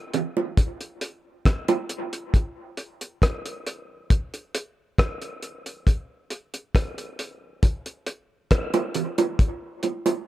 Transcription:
0.14 closed hi-hat medium
0.14 low bongo medium
0.37 high bongo medium
0.57 kick loud
0.57 closed hi-hat loud
0.81 closed hi-hat medium
1.01 closed hi-hat medium
1.45 kick loud
1.45 cross-stick loud
1.45 closed hi-hat medium
1.68 closed hi-hat soft
1.68 high bongo medium
1.89 closed hi-hat medium
2.13 closed hi-hat medium
2.34 kick loud
2.34 closed hi-hat medium
2.77 closed hi-hat medium
3.01 closed hi-hat medium
3.22 kick loud
3.22 cross-stick loud
3.22 closed hi-hat medium
3.46 closed hi-hat soft
3.66 closed hi-hat medium
4.10 kick loud
4.10 closed hi-hat loud
4.34 closed hi-hat medium
4.55 closed hi-hat medium
4.98 kick loud
4.98 cross-stick loud
4.98 closed hi-hat medium
5.22 closed hi-hat medium
5.42 closed hi-hat medium
5.66 closed hi-hat medium
5.87 kick loud
5.87 closed hi-hat medium
6.30 closed hi-hat medium
6.54 closed hi-hat medium
6.75 kick loud
6.75 cross-stick loud
6.75 closed hi-hat medium
6.98 closed hi-hat medium
7.19 closed hi-hat medium
7.63 kick loud
7.63 closed hi-hat loud
7.86 closed hi-hat medium
8.06 closed hi-hat medium
8.51 kick loud
8.51 cross-stick loud
8.51 closed hi-hat medium
8.74 closed hi-hat soft
8.74 high bongo medium
8.94 closed hi-hat medium
8.94 low bongo medium
9.18 closed hi-hat medium
9.18 high bongo medium
9.39 kick loud
9.39 closed hi-hat medium
9.83 closed hi-hat medium
9.83 high bongo medium
10.06 closed hi-hat medium
10.06 high bongo medium

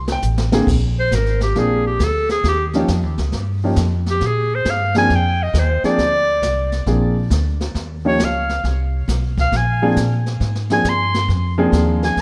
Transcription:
0.00 0.22 C2 medium
0.00 0.10 C6 loud
0.08 snare medium
0.12 0.20 G5 loud
0.22 0.66 A1 medium
0.22 hi-hat pedal medium
0.38 snare medium
0.52 0.66 D3 medium
0.52 0.66 A#3 medium
0.52 0.67 C4 medium
0.52 0.67 G#4 medium
0.52 snare medium
0.67 1.10 A#1 medium
0.67 brush sweep soft
0.67 kick medium
0.67 snare soft
0.67 crash medium
1.00 1.17 C5 loud
1.11 1.54 G#1 medium
1.11 1.42 A#4 medium
1.11 kick soft
1.11 snare medium
1.11 hi-hat pedal medium
1.26 snare soft
1.41 1.61 G4 medium
1.41 snare soft
1.55 1.98 A#1 medium
1.55 1.83 F3 medium
1.55 1.83 A#3 medium
1.55 1.83 C4 medium
1.55 1.83 D4 medium
1.55 1.83 G#4 medium
1.55 brush sweep soft
1.55 kick soft
1.55 snare soft
1.59 1.86 G#4 medium
1.87 2.05 G4 medium
1.99 2.43 D2 medium
1.99 kick soft
1.99 snare medium
1.99 hi-hat pedal medium
2.04 2.31 A4 loud
2.29 2.44 G#4 medium
2.29 snare soft
2.44 2.87 D#2 medium
2.44 brush sweep soft
2.44 kick soft
2.44 snare soft
2.48 2.65 G4 medium
2.74 2.88 F3 medium
2.74 2.88 A#3 medium
2.74 2.88 C#4 medium
2.74 2.88 D#4 medium
2.74 2.88 G4 medium
2.74 snare soft
2.88 3.03 F2 medium
2.88 kick soft
2.88 snare medium
2.88 hi-hat pedal medium
3.03 3.17 D#2 medium
3.18 3.31 C#2 medium
3.18 snare soft
3.32 3.75 G2 medium
3.32 brush sweep medium
3.32 kick soft
3.32 snare soft
3.64 3.76 F3 medium
3.64 3.77 A#3 medium
3.64 3.77 C#4 medium
3.64 3.77 D#4 medium
3.64 3.77 G4 medium
3.76 4.20 F2 loud
3.76 kick soft
3.76 snare medium
3.76 hi-hat pedal medium
4.06 snare soft
4.11 4.29 G4 medium
4.21 4.64 A#2 medium
4.21 brush sweep soft
4.21 kick soft
4.21 snare soft
4.27 4.57 G#4 medium
4.55 4.72 C5 medium
4.65 5.08 G2 medium
4.65 kick soft
4.65 snare medium
4.65 hi-hat pedal medium
4.70 4.98 F5 medium
4.95 5.09 F3 medium
4.95 5.09 A#3 medium
4.95 5.09 C4 medium
4.95 5.09 D4 medium
4.95 5.09 G#4 medium
4.95 5.17 G#5 loud
4.95 snare medium
5.10 5.53 F2 medium
5.10 brush sweep soft
5.10 kick soft
5.10 snare soft
5.16 5.44 G5 loud
5.43 5.61 D#5 medium
5.54 5.81 D#2 loud
5.54 kick soft
5.54 snare medium
5.54 hi-hat pedal medium
5.59 5.85 C5 medium
5.83 5.97 F3 medium
5.83 5.97 A#3 medium
5.83 5.97 C4 medium
5.83 5.97 D4 medium
5.83 5.98 G#4 medium
5.83 6.84 D5 loud
5.83 muted upright bass stroke soft
5.83 snare soft
5.98 6.41 D2 medium
5.98 brush sweep soft
5.98 kick soft
5.98 snare soft
6.42 6.85 C2 medium
6.42 kick soft
6.42 snare medium
6.42 hi-hat pedal medium
6.72 snare soft
6.86 7.29 A#1 medium
6.86 7.14 F3 medium
6.86 7.14 A#3 medium
6.86 7.14 C4 medium
6.86 7.14 D4 medium
6.86 7.14 G#4 medium
6.86 brush sweep medium
6.86 kick soft
6.86 snare soft
7.30 7.74 D2 loud
7.30 kick soft
7.30 snare medium
7.30 hi-hat pedal medium
7.61 snare soft
7.74 8.18 D#2 medium
7.74 brush sweep soft
7.74 kick soft
7.74 snare soft
8.05 8.18 F3 medium
8.05 8.18 A#3 medium
8.05 8.18 C#4 medium
8.05 8.18 D#4 medium
8.05 8.19 G4 medium
8.05 8.26 C#5 medium
8.19 8.62 C#2 medium
8.19 kick soft
8.19 snare medium
8.19 hi-hat pedal medium
8.25 8.66 F5 medium
8.49 snare soft
8.64 9.07 C2 medium
8.64 brush sweep soft
8.64 kick soft
8.64 snare soft
9.08 9.51 B1 medium
9.08 kick soft
9.08 snare medium
9.08 hi-hat pedal medium
9.38 9.58 F5 medium
9.38 kick medium
9.38 snare soft
9.52 9.95 A#1 medium
9.52 brush sweep soft
9.52 kick soft
9.52 snare soft
9.57 9.99 G#5 medium
9.82 9.95 F3 medium
9.82 9.95 A#3 medium
9.82 9.95 C4 medium
9.82 9.96 D4 medium
9.82 9.96 G#4 medium
9.96 10.39 A#2 loud
9.96 kick soft
9.96 snare medium
9.96 hi-hat pedal medium
10.26 snare soft
10.40 10.83 G#2 medium
10.40 brush sweep soft
10.40 kick soft
10.40 snare soft
10.55 snare soft
10.70 10.84 F3 medium
10.70 10.84 A#3 medium
10.70 10.84 C4 medium
10.70 10.84 D4 medium
10.70 10.84 G#4 medium
10.70 10.91 G#5 loud
10.70 snare medium
10.84 11.27 G2 medium
10.84 kick soft
10.84 snare medium
10.84 hi-hat pedal medium
10.89 11.31 C6 loud
11.14 snare soft
11.28 11.72 F2 medium
11.28 brush sweep soft
11.28 kick soft
11.28 snare soft
11.58 12.14 F3 medium
11.58 12.14 A#3 medium
11.58 12.15 C4 medium
11.58 12.15 D4 medium
11.58 12.15 G#4 loud
11.72 12.16 D#2 medium
11.72 kick soft
11.72 snare medium
11.72 hi-hat pedal medium
12.03 12.22 G#5 medium
12.03 snare soft
12.16 12.22 D2 medium
12.16 brush sweep soft
12.16 kick soft
12.16 snare soft

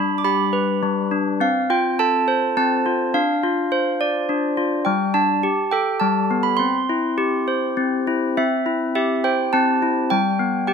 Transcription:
0.00 0.82 G3 medium
0.00 1.10 D4 medium
0.00 0.19 B5 loud
0.18 0.25 D6 medium
0.24 1.41 G4 medium
0.24 1.08 B5 medium
0.53 1.41 B4 medium
0.83 1.41 G3 medium
1.11 1.41 D4 medium
1.41 2.56 C4 medium
1.41 1.71 F5 medium
1.70 2.85 F4 medium
1.70 1.97 G5 medium
1.99 3.15 A4 medium
1.99 2.56 A5 loud
2.28 3.14 C5 medium
2.57 3.14 C4 medium
2.57 3.16 A5 medium
2.86 3.15 F4 medium
3.14 4.28 D4 medium
3.14 4.25 F5 medium
3.43 4.56 F4 medium
3.72 4.86 C5 medium
4.01 4.86 D5 medium
4.29 4.86 D4 medium
4.57 4.86 F4 medium
4.85 5.43 G3 medium
4.85 5.15 G5 medium
5.14 5.43 D4 medium
5.14 5.74 A5 medium
5.43 6.59 G4 medium
5.71 6.60 A4 medium
5.71 6.02 G5 medium
6.00 6.59 G3 medium
6.00 6.41 A5 medium
6.31 6.60 B3 medium
6.43 6.59 B5 medium
6.57 7.76 C4 medium
6.57 7.72 C6 medium
6.89 8.06 E4 medium
7.18 8.37 G4 medium
7.48 8.37 C5 medium
7.77 8.36 C4 medium
8.07 8.37 E4 medium
8.37 9.52 C4 medium
8.37 8.94 E5 medium
8.66 9.81 E4 medium
8.95 10.11 G4 medium
8.95 9.25 E5 medium
9.24 10.11 C5 medium
9.24 9.51 G5 medium
9.53 10.11 C4 medium
9.53 10.12 A5 medium
9.82 10.11 E4 medium
10.10 10.73 G3 medium
10.10 10.63 G5 medium
10.40 10.73 B3 medium
10.67 10.73 G4 medium
10.67 10.73 G5 medium

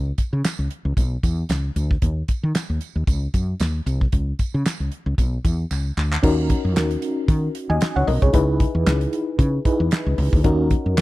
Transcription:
0.00 0.11 C#2 loud
0.18 kick medium
0.18 closed hi-hat medium
0.18 tambourine soft
0.33 0.41 C#3 medium
0.44 snare loud
0.44 clap medium
0.44 closed hi-hat medium
0.44 tambourine medium
0.59 0.67 C#2 medium
0.71 closed hi-hat medium
0.85 0.94 C#2 medium
0.97 1.16 B1 loud
0.97 kick loud
0.97 closed hi-hat medium
0.97 tambourine medium
1.23 1.42 E2 medium
1.23 kick medium
1.23 closed hi-hat medium
1.23 tambourine medium
1.49 1.69 C#2 medium
1.49 snare medium
1.49 clap medium
1.49 closed hi-hat medium
1.49 tambourine medium
1.76 1.95 D2 medium
1.76 closed hi-hat medium
1.76 tambourine soft
1.91 kick medium
2.02 2.21 D#2 medium
2.02 kick loud
2.02 closed hi-hat medium
2.28 kick medium
2.28 closed hi-hat medium
2.28 tambourine soft
2.43 2.52 D#3 medium
2.55 snare loud
2.55 clap medium
2.55 closed hi-hat medium
2.55 tambourine medium
2.70 2.78 D#2 medium
2.81 closed hi-hat medium
2.81 tambourine soft
2.96 3.04 D#2 medium
3.07 3.26 C#2 medium
3.07 kick loud
3.07 closed hi-hat medium
3.07 tambourine medium
3.34 3.53 F#2 medium
3.34 kick medium
3.34 closed hi-hat medium
3.34 tambourine medium
3.60 3.79 D#2 medium
3.60 snare medium
3.60 clap medium
3.60 closed hi-hat medium
3.60 tambourine medium
3.86 4.05 C2 loud
3.86 closed hi-hat medium
3.86 tambourine soft
4.01 kick medium
4.12 4.32 C#2 loud
4.12 kick loud
4.12 closed hi-hat medium
4.39 kick medium
4.39 closed hi-hat medium
4.39 tambourine soft
4.54 4.63 C#3 medium
4.66 snare loud
4.66 clap medium
4.66 closed hi-hat medium
4.66 tambourine medium
4.80 4.89 C#2 medium
4.92 closed hi-hat medium
5.06 5.15 C#2 medium
5.18 5.37 B1 medium
5.18 kick loud
5.18 closed hi-hat medium
5.18 tambourine medium
5.45 5.64 E2 medium
5.45 kick loud
5.45 closed hi-hat medium
5.45 tambourine medium
5.71 5.90 C#2 medium
5.71 clap soft
5.71 tambourine medium
5.97 6.16 D2 medium
5.97 clap medium
5.97 tambourine soft
6.13 clap medium
6.23 6.53 D#2 loud
6.23 8.30 C#4 medium
6.23 8.30 D#4 medium
6.23 8.30 F#4 medium
6.23 7.53 A#4 medium
6.23 kick loud
6.23 crash loud
6.50 kick loud
6.50 closed hi-hat medium
6.65 6.76 F#2 medium
6.76 6.95 D#2 loud
6.76 snare loud
6.76 clap medium
6.76 closed hi-hat loud
6.91 closed hi-hat medium
7.02 closed hi-hat medium
7.28 7.48 D#3 medium
7.28 kick loud
7.28 closed hi-hat medium
7.55 closed hi-hat medium
7.70 7.78 D#2 loud
7.70 7.95 D#5 medium
7.70 7.95 G#5 medium
7.81 snare loud
7.81 clap medium
7.81 closed hi-hat medium
7.96 8.04 C#2 loud
7.96 8.07 C#5 medium
7.96 8.07 F#5 medium
8.07 8.18 B1 loud
8.07 8.22 A#4 medium
8.07 8.21 D#5 medium
8.07 open hi-hat medium
8.22 8.31 C2 loud
8.22 8.33 G#4 medium
8.22 8.47 C#5 medium
8.22 kick loud
8.22 closed hi-hat medium
8.33 8.64 C#2 loud
8.33 9.62 D#4 medium
8.33 9.63 E4 medium
8.33 9.63 G#4 medium
8.33 9.63 B4 medium
8.33 kick loud
8.33 closed hi-hat loud
8.60 kick loud
8.60 closed hi-hat medium
8.75 8.83 E2 medium
8.86 9.06 C#2 loud
8.86 snare loud
8.86 clap loud
8.86 closed hi-hat loud
9.01 closed hi-hat medium
9.13 closed hi-hat medium
9.39 9.58 C#3 loud
9.39 kick loud
9.39 closed hi-hat medium
9.65 10.43 D#4 medium
9.65 10.44 E4 medium
9.65 10.44 G#4 medium
9.65 10.45 B4 medium
9.65 kick loud
9.65 closed hi-hat medium
9.80 9.88 E2 medium
9.91 snare loud
9.91 clap medium
9.91 closed hi-hat medium
10.06 10.15 C#2 medium
10.18 10.29 C#2 loud
10.18 open hi-hat medium
10.33 10.41 D2 medium
10.33 kick loud
10.44 10.74 D#2 loud
10.44 11.01 C#4 medium
10.44 11.01 D#4 medium
10.44 11.01 F#4 medium
10.44 11.01 A#4 medium
10.44 kick loud
10.44 closed hi-hat loud
10.71 kick loud
10.71 closed hi-hat medium
10.86 10.97 F#2 medium
10.97 11.01 D#2 loud
10.97 snare loud
10.97 closed hi-hat loud

